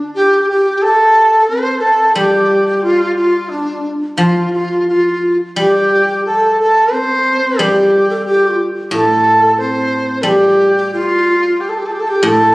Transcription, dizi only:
0.15 G4
0.49 G4
0.82 A4
1.47 C5
1.81 A4
2.15 G4
2.82 F4
3.16 F4
3.49 D4
4.17 F4
4.53 F4
4.88 F4
5.58 G4
6.25 A4
6.60 A4
6.93 C5
7.60 G4
8.25 G4
8.93 A4
9.58 C5
10.22 A4
10.28 G4
10.94 F4
11.60 G4
11.69 A4
11.78 G4
11.86 A4
11.92 G4
12.00 A4
12.08 G4
12.27 A4

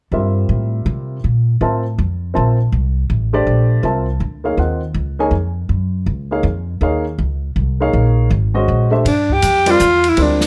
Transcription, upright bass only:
0.12 G2
0.49 A2
0.86 C3
1.24 A#2
1.61 A2
1.98 F2
2.36 A#1
2.72 C2
3.10 A1
3.47 A#1
3.83 C2
4.20 D2
4.57 D#2
4.94 C#2
5.31 F2
5.69 F#2
6.06 C#2
6.43 F2
6.81 D#2
7.18 C#2
7.56 C2
7.93 A#1
8.30 G#1
8.68 A#1
9.05 G2
9.43 F2
9.80 E2
10.17 D2

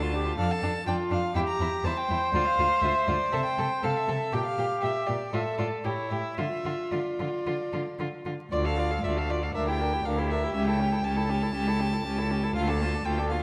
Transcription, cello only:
Already playing: D2
0.38 F2
0.63 F2
0.87 F2
1.11 F2
1.35 E2
1.60 E2
1.84 E2
2.09 E2
2.33 D2
2.58 D2
2.82 D2
3.07 D2
3.33 C3
3.58 C3
3.83 C3
4.08 C3
4.33 A#2
4.58 A#2
4.83 A#2
5.09 A#2
5.33 A2
5.59 A2
5.85 A2
6.11 A2
6.38 D3
6.65 D3
6.92 D3
7.20 D3
7.47 D3
7.73 D3
7.99 D3
8.26 D3
8.52 D2
9.04 D2
9.55 D2
10.05 D2
10.55 C#2
11.04 C#2
11.54 C#2
12.05 C#2
12.55 D2
13.05 D2

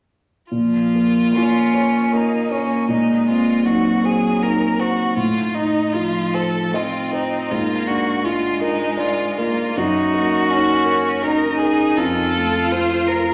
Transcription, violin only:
0.52 F4
2.14 D#4
2.51 C#4
2.90 D#4
3.29 F4
3.66 F#4
4.05 G#4
4.43 A#4
4.79 F#4
5.17 F4
5.54 D#4
5.93 F4
6.34 A4
6.75 F4
7.14 D#4
7.51 F4
7.87 F#4
8.25 F4
8.62 D#4
8.99 F4
9.37 F4
9.77 F#4
11.22 A#4
11.59 G#4
11.97 A4
12.71 C5
13.08 A#4

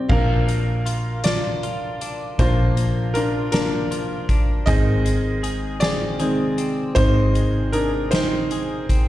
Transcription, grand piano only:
Already playing: G3 C4 D#4 D5 G5
0.09 F3 A#3 D4 A#4 F5
1.24 F4 D5
2.39 F3 A#3 D4 F4 C5
3.14 D4 A#4
3.52 F3 A#3 D4 A#4
4.66 D#3 G#3 C4 G#4 D#5
5.80 G#4 D5
6.20 D#3 G#3 C4
6.95 D#3 G#3 C4 D#4 C5
7.72 D4 A#4
8.11 D#4 C5

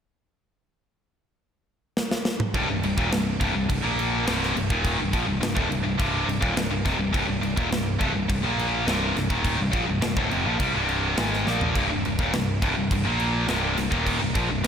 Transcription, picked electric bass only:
2.54 C1
2.68 C1
2.83 C1
2.97 D#1
3.12 C1
3.41 C1
3.54 C1
3.69 C1
3.85 A#1
4.28 C1
4.56 C1
4.70 D#1
4.99 C1
5.13 A#1
5.27 C1
5.43 C1
5.57 D1
5.70 C1
5.84 C1
5.99 C1
6.26 C1
6.42 D#1
6.55 C1
6.69 C1
6.85 F1
6.97 C1
7.14 C1
7.27 C1
7.42 C1
7.57 D#1
7.70 C1
8.01 C1
8.14 C1
8.30 C1
8.43 A#1
8.85 C1
9.16 C1
9.30 D#1
9.60 C1
9.73 A#1
9.88 C1
10.03 C1
10.17 D1
10.33 F1
10.46 A#1
10.59 C2
10.75 C1
11.18 G#1
11.47 A#1
11.76 C1
11.90 C1
12.03 C1
12.18 D#1
12.33 C1
12.62 C1
12.77 C1
12.91 C1
13.06 A#1
13.48 C1
13.77 C1
13.91 D#1
14.22 C1
14.35 A#1
14.50 C1
14.64 C1

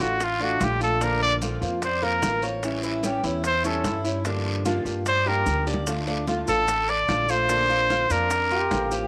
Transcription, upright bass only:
0.00 A1
0.61 A#1
1.61 F2
2.22 A1
3.24 E2
3.84 G2
4.85 G2
5.46 D2
6.48 A1
7.08 A#1
8.10 F2
8.71 A1

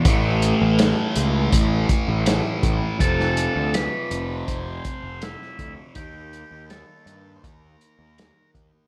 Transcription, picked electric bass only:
0.05 A1
0.62 A1
1.16 C#2
1.53 A1
2.08 A1
2.63 A1
3.00 F1
3.56 D2
4.11 F1
4.48 F1
5.03 F1
5.59 D2
5.96 D#2
6.51 D#2
7.06 G2
7.44 D#2
7.99 D#2
8.55 D#2

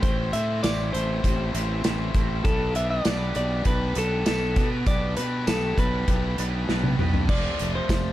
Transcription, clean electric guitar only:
0.02 C5
0.33 E5
0.63 D5
0.93 C5
2.45 A4
2.76 E5
2.90 D5
3.36 D5
3.67 B4
3.98 A4
4.27 A4
4.87 D5
5.17 B4
5.47 A4
5.79 B4
7.30 D5
7.75 C5

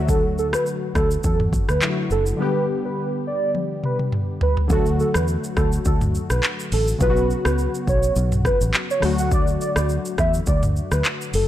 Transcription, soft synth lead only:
0.10 A4
0.39 A4
0.55 B4
0.96 A4
1.25 A4
1.70 B4
2.12 A4
2.41 B4
2.85 B4
3.27 D5
3.85 B4
4.42 B4
4.71 A4
5.00 A4
5.16 B4
5.58 A4
5.87 A4
6.32 B4
6.73 A4
7.02 B4
7.47 B4
7.89 C#5
8.46 B4
8.91 C#5
9.20 F#5
9.33 D5
9.62 D5
9.78 D5
10.19 E5
10.48 D5
10.93 B4
11.35 A4

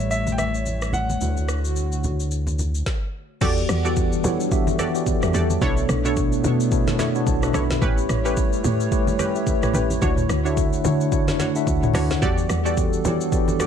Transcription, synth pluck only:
3.41 F#4 G4 A4 D5
3.85 F#4 G4 A4 D5
4.79 F#4 G4 A4 D5
5.34 F#4 G4 A4 D5
5.61 D4 E4 A4 C#5
6.05 D4 E4 A4 C#5
6.99 D4 E4 A4 C#5
7.54 D4 E4 A4 C#5
7.81 C#4 G4 B4
8.25 C#4 G4 B4
9.19 C#4 G4 B4
9.74 C#4 G4 B4
10.02 D4 F#4 C#5
10.45 D4 F#4 C#5
11.39 D4 F#4 C#5
11.94 D4 F#4 C#5
12.22 F#4 G4 A4 D5
12.65 F#4 G4 A4 D5
13.59 F#4 G4 A4 D5

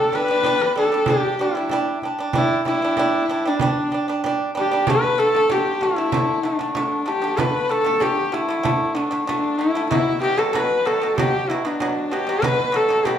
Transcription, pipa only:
0.13 G3 D4
0.28 G3 D4
0.44 G3 D4
0.75 G3 D4
0.92 G3 D4
1.08 G3 D4
1.39 G3 D4
1.55 G3 D4
1.71 G3 D4
2.03 G3 D4
2.19 G3 D4
2.33 G3 D4
2.66 G3 D4
2.82 G3 D4
2.98 G3 D4
3.29 G3 D4
3.45 G3 D4
3.61 G3 D4
3.92 G3 D4
4.08 G3 D4
4.24 G3 D4
4.55 G3 D4
4.71 G3 D4
4.88 D3 A3
5.18 D3 A3
5.35 D3 A3
5.50 D3 A3
5.81 D3 A3
5.96 D3 A3
6.12 D3 A3
6.43 D3 A3
6.59 D3 A3
6.75 D3 A3
7.06 D3 A3
7.22 D3 A3
7.37 D3 A3
7.69 D3 A3
7.84 D3 A3
8.00 D3 A3
8.32 D3 A3
8.49 D3 A3
8.63 D3 A3
8.95 D3 A3
9.11 D3 A3
9.27 D3 A3
9.59 D3 A3
9.75 D3 A3
9.91 B2 F#3
10.22 B2 F#3
10.37 B2 F#3
10.53 B2 F#3
10.85 B2 F#3
11.02 B2 F#3
11.18 B2 F#3
11.50 B2 F#3
11.65 B2 F#3
11.80 B2 F#3
12.11 B2 F#3
12.27 B2 F#3
12.42 B2 F#3
12.72 B2 F#3
12.89 B2 F#3
13.05 B2 F#3

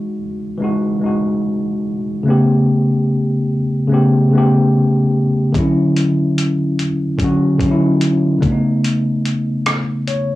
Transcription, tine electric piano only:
Already playing: E3 G#3 D#4 F#4
0.58 E3 G#3
0.62 D#4 F#4
0.99 E3 G#3
1.04 D#4 F#4
2.23 C#3 A3
2.28 B3 G4
3.87 C#3 A3
3.92 B3 G4
4.31 C#3 A3
4.35 B3 G4
5.52 D3 F#3
5.57 C#4 E4
7.17 D3 F#3
7.22 C#4 F#4
7.58 D3 F#3
7.62 C#4 D#4
7.71 E4
8.38 C#3 A3
8.43 B3 D4
8.52 D#4
10.08 C#5

